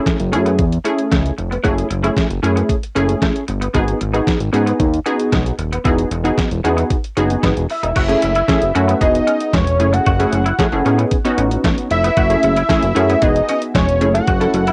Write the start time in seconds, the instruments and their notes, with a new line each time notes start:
Already playing: analog polysynth A3 C#4 E4 G#4
0.06 muted clean electric guitar stroke, kick, snare, closed hi-hat
0.20 analog synth bass F#1, closed hi-hat
0.32 analog synth bass F#2, analog polysynth A3 C#4 E4 G#4, clean electric guitar C#4, closed hi-hat
0.46 clean electric guitar B3, closed hi-hat
0.59 analog synth bass E2, kick, closed hi-hat
0.72 closed hi-hat
0.84 analog polysynth A3 C#4 E4 G#4, clean electric guitar C#4, closed hi-hat
0.98 closed hi-hat
1.11 analog synth bass C#2, clean electric guitar A3, kick, snare, closed hi-hat
1.26 closed hi-hat
1.38 analog synth bass F1, muted clean electric guitar stroke, closed hi-hat
1.51 clean electric guitar B3, closed hi-hat
1.64 analog synth bass F#1, analog polysynth A3 C#4 E4 G#4, clean electric guitar F#4, kick, closed hi-hat
1.78 closed hi-hat
1.91 analog synth bass F#1, muted clean electric guitar stroke, closed hi-hat
2.03 analog polysynth A3 C#4 E4 G#4, clean electric guitar E4, closed hi-hat
2.17 muted clean electric guitar stroke, kick, snare, closed hi-hat
2.30 analog synth bass F#1, closed hi-hat
2.43 analog synth bass F#2, analog polysynth A3 C#4 E4 G#4, clean electric guitar C#4, closed hi-hat
2.56 clean electric guitar B3, closed hi-hat
2.69 kick, closed hi-hat
2.83 closed hi-hat
2.95 analog synth bass F#1, analog polysynth A3 C#4 E4 G#4, clean electric guitar C#4, closed hi-hat
3.09 closed hi-hat
3.22 clean electric guitar A3, kick, snare, closed hi-hat
3.36 closed hi-hat
3.48 analog synth bass G1, muted clean electric guitar stroke, closed hi-hat
3.61 clean electric guitar B3, closed hi-hat
3.74 analog synth bass G#1, clean electric guitar G#3, analog polysynth B3 D#4 F#4 G#4, kick, closed hi-hat
3.88 closed hi-hat
4.01 analog synth bass G#1, muted clean electric guitar stroke, closed hi-hat
4.13 analog polysynth B3 D#4 F#4 G#4, clean electric guitar D#4, closed hi-hat
4.27 muted clean electric guitar stroke, kick, snare, closed hi-hat
4.40 analog synth bass G#1, closed hi-hat
4.52 analog synth bass G#2, analog polysynth B3 D#4 F#4 G#4, clean electric guitar C#4, closed hi-hat
4.66 clean electric guitar B3, closed hi-hat
4.80 analog synth bass D#2, kick, closed hi-hat
4.94 closed hi-hat
5.06 analog polysynth B3 D#4 F#4 G#4, clean electric guitar C#4, closed hi-hat
5.20 closed hi-hat
5.32 analog synth bass B1, clean electric guitar G#3, kick, snare, closed hi-hat
5.46 closed hi-hat
5.59 analog synth bass D#1, muted clean electric guitar stroke, closed hi-hat
5.73 clean electric guitar B3, closed hi-hat
5.84 analog synth bass E1, analog polysynth B3 D#4 F#4 G#4, clean electric guitar E4, kick, closed hi-hat
5.99 closed hi-hat
6.11 analog synth bass E1, muted clean electric guitar stroke, closed hi-hat
6.24 analog polysynth B3 D#4 F#4 G#4, clean electric guitar D#4, closed hi-hat
6.38 muted clean electric guitar stroke, kick, snare, closed hi-hat
6.51 analog synth bass E1, closed hi-hat
6.64 analog synth bass E2, analog polysynth B3 D#4 F#4 G#4, clean electric guitar C#4, closed hi-hat
6.77 clean electric guitar B3, closed hi-hat
6.90 kick, closed hi-hat
7.04 closed hi-hat
7.17 analog synth bass F#1, analog polysynth B3 D#4 F#4 G#4, clean electric guitar C#4, closed hi-hat
7.30 closed hi-hat
7.43 analog synth bass G#1, clean electric guitar B3, kick, snare, closed hi-hat
7.57 analog synth bass E1, closed hi-hat
7.70 analog synth lead E5, muted clean electric guitar stroke, open hi-hat
7.83 analog synth bass E1, clean electric guitar D#4, closed hi-hat
7.96 analog synth bass F#1, clean electric guitar F#4, kick, closed hi-hat, crash
8.08 analog polysynth A3 C#4 E4 G#4, closed hi-hat
8.22 analog synth bass F#1, muted clean electric guitar stroke, closed hi-hat
8.35 clean electric guitar E4, closed hi-hat
8.48 analog polysynth A3 C#4 E4 G#4, muted clean electric guitar stroke, kick, snare, closed hi-hat
8.62 analog synth bass F#1, closed hi-hat
8.75 analog synth bass F#2, analog polysynth A3 C#4 E4 F#4, clean electric guitar C#4, closed hi-hat
8.88 clean electric guitar B3, closed hi-hat
9.01 analog synth bass E1, analog polysynth B3 D#4 F#4 G#4, analog synth lead D#5, kick, closed hi-hat
9.15 closed hi-hat
9.27 clean electric guitar C#4, closed hi-hat
9.41 closed hi-hat
9.54 analog synth bass E1, clean electric guitar G#3, analog synth lead C#5, kick, snare, closed hi-hat
9.67 closed hi-hat
9.80 analog synth bass F#1, analog polysynth A3 C#4 E4 G#4, muted clean electric guitar stroke, closed hi-hat
9.93 clean electric guitar A3, analog synth lead F#5, closed hi-hat
10.06 analog synth bass F#1, clean electric guitar F#4, kick, closed hi-hat
10.19 analog polysynth A3 C#4 E4 G#4, closed hi-hat
10.33 analog synth bass F#1, muted clean electric guitar stroke, closed hi-hat
10.46 clean electric guitar E4, closed hi-hat
10.59 analog polysynth A3 C#4 E4 G#4, muted clean electric guitar stroke, kick, snare, closed hi-hat
10.72 analog synth bass F#1, analog polysynth A3 C#4 E4 G#4, closed hi-hat
10.85 analog synth bass A2, analog polysynth B3 C#4 D#4 G#4, clean electric guitar C#4, closed hi-hat
10.98 clean electric guitar B3, closed hi-hat
11.11 kick, closed hi-hat
11.25 analog polysynth B3 C#4 D#4 F#4, closed hi-hat
11.38 analog synth bass A1, clean electric guitar C#4, closed hi-hat
11.51 closed hi-hat
11.64 clean electric guitar A3, kick, snare, closed hi-hat
11.78 closed hi-hat
11.91 analog synth bass F1, analog synth lead E5, muted clean electric guitar stroke, closed hi-hat
12.04 clean electric guitar B3, closed hi-hat
12.17 analog synth bass F#1, clean electric guitar F#4, kick, closed hi-hat
12.30 analog polysynth A3 C#4 E4 G#4, closed hi-hat
12.43 analog synth bass F#1, muted clean electric guitar stroke, closed hi-hat
12.56 clean electric guitar E4, closed hi-hat
12.69 analog polysynth A3 C#4 E4 G#4, muted clean electric guitar stroke, kick, snare, closed hi-hat
12.83 analog synth bass F#1, closed hi-hat
12.95 analog synth bass F#2, analog polysynth A3 C#4 E4 G#4, clean electric guitar C#4, closed hi-hat
13.10 clean electric guitar B3, closed hi-hat
13.22 analog synth bass E1, analog polysynth B3 D#4 F#4 G#4, analog synth lead D#5, kick, closed hi-hat
13.36 closed hi-hat
13.48 clean electric guitar C#4, analog synth lead D#5, closed hi-hat
13.62 closed hi-hat
13.75 analog synth bass E1, clean electric guitar G#3, analog synth lead C#5, kick, snare, closed hi-hat
13.89 closed hi-hat
14.01 analog synth bass F#1, analog polysynth A3 C#4 E4 G#4, muted clean electric guitar stroke, closed hi-hat
14.14 clean electric guitar A3, analog synth lead F#5, closed hi-hat
14.27 analog synth bass F#1, clean electric guitar F#4, kick, closed hi-hat
14.40 analog polysynth A3 C#4 E4 A4, closed hi-hat
14.54 analog synth bass F#1, muted clean electric guitar stroke, closed hi-hat
14.67 clean electric guitar E4, closed hi-hat